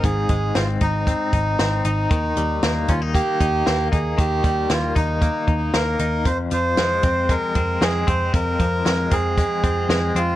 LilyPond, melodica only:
\new Staff \with { instrumentName = "Melodica" } { \time 4/4 \key ees \mixolydian \tempo 4 = 116 aes'4 f'8 ees'2 ees'8~ | ees'4. f'8 g'4. aes'8 | g'4 f'8 ees'4. bes'4 | c''8 c''4. bes'4 aes'8 c''8 |
bes'4. aes'2 f'8 | }